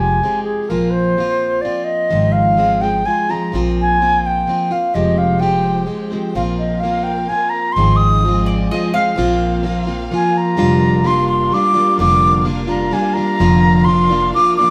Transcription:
Already playing: F1 F3 G#3 C4 G4 G#5
0.22 F3 G#3 C4 G4
0.43 G#4
0.69 A#1 A#2 F3 A#3 C4 F4 A#4
0.91 C5
1.17 F3 A#3 C4 F4
1.61 F3 A#3 C4 F4 D5
1.84 D#5
2.10 G#1 G#2 D#3 F3 G#3 C4 F4
2.32 F5
2.57 F3 G#3 C4 F4
2.81 F3 G#3 C4 F4 G5
3.04 F3 G#3 C4 F4 G#5
3.29 F3 G#3 C4 F4 A#5
3.52 A#1 A#2 F3 A#3 C4 F4
3.81 G#5
4.00 F3 A#3 C4 F4
4.26 G5
4.47 F3 A#3 C4 F4
4.71 A#3 C4 F4 F5
4.93 F1 F2 C3 F3 G#3 C4 F4 G4 C5 D#5 G5
5.18 F5
5.39 F3 G#3 C4 G4 G5
5.86 F3 G#3 C4 G4
6.10 F3 G#3 C4 G4
6.35 A#1 A#2 F3 A#3 C4 F4 A#4 F5
6.58 D#5
6.80 F3 A#3 F5
6.85 C4 F4
7.04 G5
7.28 F3 A#3 C4 F4 G#5
7.49 A#5
7.72 G#1 C6
7.77 G#2 D#3 F3 G#3 C4 F4 G#4 D#5
7.96 D#6
8.25 F3 G#3 C4 F4
8.46 D5
8.71 F3 G#3 C4 F4 D#5
8.94 F3 G#3 C4 F4 F5
9.16 A#1 A#2 F3 A#3 C4 F4 A#4 F5
9.63 F3 A#3 C4 F4
9.87 A#3 C4 F4
10.11 F3 A#3 C4 F4 G#5
10.37 A#5
10.56 F1 F2 D3 G3 A#3 D4 F4 G4 A#4 F5
11.04 G3 A#3 D4 F4 C6
11.28 C6
11.52 G3 A#3 D4 F4 D6
11.74 G3 A#3 D4 F4
11.98 F1 F2 D3 G3 A#3 D4 F4 D6
12.44 G3 A#3 D4 F4
12.67 G3 A#3 D4 F4 A#5
12.91 G3 A#3 D4 F4 G#5
13.14 D4 F4 A#5
13.18 G3 A#3
13.39 F1 F2 D3 F3 A#3 D4 F4 A#4
13.84 F3 A#3 D4 C6
13.89 F4
14.10 F3 A#3 D4 F4
14.33 F3 A#3 D4 F4 D6
14.57 A#3 D4 F4 D6
14.62 F3

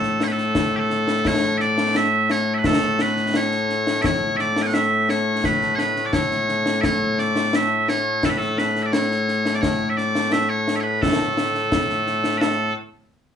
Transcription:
Already playing: A2 A3 A4
0.03 snare
0.20 C#5, snare
0.27 B4
0.32 A4
0.38 snare
0.55 concert bass drum, snare
0.76 G4 A4
0.90 snare
1.07 snare
1.25 C#5, concert bass drum, snare
1.57 D5 E5, snare
1.78 snare
1.95 E5, snare
2.30 C#5, snare
2.54 E5
2.58 B4
2.64 A4, concert bass drum, snare
2.82 snare
2.99 B4, snare
3.16 snare
3.34 C#5, snare
3.51 snare
3.69 snare
3.87 snare
4.02 C#5 E5, concert bass drum, snare
4.37 D5 E5, snare
4.56 snare
4.62 G#5
4.66 F#5
4.74 E5, snare
5.09 C#5, snare
5.44 B4, concert bass drum, snare
5.62 snare
5.75 B4 C#5, snare
5.96 snare
6.05 D5
6.13 C#5, concert bass drum, snare
6.31 snare
6.49 snare
6.66 snare
6.81 C#5 E5, concert bass drum, snare
7.19 D5, snare
7.36 snare
7.53 E5, snare
7.88 C#5, snare
8.23 A4, concert bass drum, snare
8.30 B4
8.38 A4, snare
8.58 B4, snare
8.76 snare
8.82 D5 E5
8.92 C#5, snare
9.11 snare
9.28 snare
9.45 snare
9.55 D5
9.61 C#5, concert bass drum, snare
9.89 E5
9.97 D5, snare
10.15 snare
10.32 E5, snare
10.49 C#5
10.68 snare
10.76 E5
10.80 B4 C#5
11.02 A4, concert bass drum, snare
11.20 snare
11.37 snare
11.55 snare
11.72 concert bass drum, snare
11.90 snare
12.07 snare
12.24 snare
12.38 A4 B4, snare

